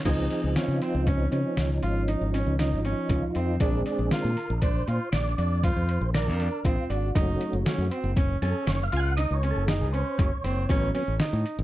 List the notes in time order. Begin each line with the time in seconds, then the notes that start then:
0.05 C#2 F3 C4 D#4 G#4, kick, closed hi-hat, crash
0.31 snare, closed hi-hat
0.44 C#2
0.56 C#4 F4, snare, closed hi-hat
0.68 C#3
0.82 C4, snare, closed hi-hat
0.95 C#2
1.07 C4 C#4, kick, closed hi-hat
1.32 C#3 C#4, closed hi-hat
1.57 C#2 C#4, snare, closed hi-hat
1.83 G#1 F4, closed hi-hat
2.08 D#4, closed hi-hat
2.21 G#1
2.34 C#4, snare, closed hi-hat
2.46 C#2
2.59 D#4, snare, closed hi-hat
2.72 G#1
2.85 C#4, closed hi-hat
3.09 C#2 F4, kick, closed hi-hat
3.35 F2 C4, closed hi-hat
3.60 A#1 G#3 C4 D4 G#4, kick, closed hi-hat
3.86 D4, snare, closed hi-hat
3.99 A#1
4.11 F4 A#4, snare, closed hi-hat
4.24 A#2
4.37 snare, closed hi-hat
4.50 A#1
4.62 D4 C5, kick, closed hi-hat
4.88 A#2 F4, closed hi-hat
5.12 A#1 D4 D5, snare, closed hi-hat
5.38 F2 D4, closed hi-hat
5.63 F4 C5, kick, snare, closed hi-hat
5.76 F2
5.89 closed hi-hat
6.01 A#1
6.14 D4 A#4, snare, closed hi-hat
6.27 F2
6.40 D4, snare, closed hi-hat
6.64 A#1 C4 F4, kick, closed hi-hat
6.90 G#1 D4 F#4, closed hi-hat
7.15 F#1 F#3 A3 C#4 D#4, kick, closed hi-hat
7.41 closed hi-hat
7.53 F#1
7.66 C#4, snare, closed hi-hat
7.78 F#2
7.91 C4, closed hi-hat
8.04 F#1
8.17 C#4, kick, closed hi-hat
8.42 F#2 C#4 A4, snare, closed hi-hat
8.67 F#1 C#5, snare, closed hi-hat
8.83 F5
8.92 C#2 F4, closed hi-hat
8.97 F#5 G#5
9.17 D#4 D#5, snare, closed hi-hat
9.31 C#2 C#5
9.43 C#4, closed hi-hat
9.51 A4
9.56 F#1
9.67 D#4 G#4, snare, closed hi-hat
9.81 C#2
9.93 C#4 C5, closed hi-hat
10.18 F#1 C#5, kick, closed hi-hat
10.44 F#1 C4, snare, closed hi-hat
10.69 A1 F#3 B3 C#4, kick, closed hi-hat
10.95 C#4, snare, closed hi-hat
11.08 A1
11.20 D#4, snare, closed hi-hat
11.33 A2
11.46 closed hi-hat
11.59 A1